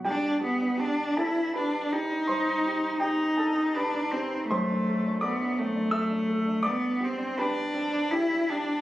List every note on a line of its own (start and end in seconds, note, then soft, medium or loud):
0.05 2.25 G2 soft
0.05 0.41 D4 soft
0.05 0.40 G4 soft
0.05 1.18 G5 medium
0.23 0.54 D4 soft
0.41 0.81 B3 soft
0.41 0.72 G4 soft
0.61 0.92 D4 soft
0.78 1.19 D4 soft
0.78 1.09 G4 soft
0.99 1.29 D4 soft
1.17 1.37 C4 soft
1.17 1.55 E4 medium
1.17 1.53 A4 soft
1.17 1.55 A5 medium
1.35 1.66 D4 soft
1.54 1.93 D4 soft
1.54 1.85 G4 soft
1.54 2.25 B4 soft
1.54 2.28 B5 medium
1.75 2.04 D4 soft
1.92 3.00 D#4 medium
1.92 2.22 G4 soft
2.12 2.29 D4 soft
2.28 4.46 G2 soft
2.28 2.98 C5 soft
2.28 3.01 C6 medium
2.49 2.77 D#4 soft
2.66 2.95 G4 soft
2.85 3.14 D#4 soft
3.00 3.76 D#4 soft
3.00 3.36 G4 soft
3.00 3.38 G5 medium
3.19 3.50 D#4 soft
3.37 3.57 D4 soft
3.37 3.74 A4 soft
3.37 3.76 A5 medium
3.57 3.87 D#4 soft
3.74 4.13 D4 medium
3.74 4.06 G4 soft
3.74 4.46 B4 soft
3.74 4.50 B5 medium
3.94 4.24 D#4 soft
4.11 4.48 C4 soft
4.11 4.43 G4 soft
4.33 4.51 D#4 soft
4.48 6.62 F#2 soft
4.48 5.19 A3 soft
4.48 5.18 C5 medium
4.48 5.22 C6 medium
4.71 4.98 D4 soft
4.89 5.16 A4 soft
5.07 5.34 D4 soft
5.21 5.60 B3 soft
5.21 5.51 A4 soft
5.21 5.89 D5 medium
5.21 5.93 D6 medium
5.40 5.68 D4 soft
5.58 6.67 A3 medium
5.58 5.76 C4 soft
5.75 6.04 D4 soft
5.91 6.21 A4 soft
5.91 6.61 E5 medium
5.91 6.65 E6 medium
6.11 6.40 D4 soft
6.29 6.58 A4 soft
6.46 6.65 D4 soft
6.63 8.80 G2 soft
6.63 7.05 B3 medium
6.63 7.33 D5 medium
6.63 7.37 D6 medium
6.82 7.12 D4 soft
7.00 7.40 C4 soft
7.00 7.31 G4 soft
7.18 7.48 D4 soft
7.38 8.13 D4 medium
7.38 7.68 G4 soft
7.38 7.72 B4 medium
7.38 7.74 B5 medium
7.56 7.85 D4 soft
7.74 7.93 C4 soft
7.92 8.22 D4 soft
8.11 8.51 E4 medium
8.11 8.42 G4 soft
8.32 8.61 D4 soft
8.50 8.81 D4 medium
8.50 8.79 G4 soft
8.69 8.81 D4 soft